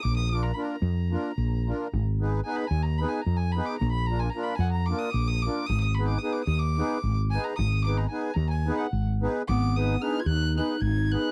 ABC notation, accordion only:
X:1
M:7/8
L:1/8
Q:1/4=111
K:none
V:1 name="Accordion"
z [_B,DF_B] [B,DFB] z [B,DFB] z [B,DFB] | z [_C_E_A_c] [CEAc] z [CEAc] z [CEAc] | z [_B,DF_B] [B,DFB] z [B,DFB] z [B,DFB] | z [_C_E_A_c] [CEAc] z [CEAc] z [CEAc] |
z [_C_E_A_c] [CEAc] z [CEAc] z [CEAc] | z [_C_E_A_c] [CEAc] z [CEAc] z [CEAc] |]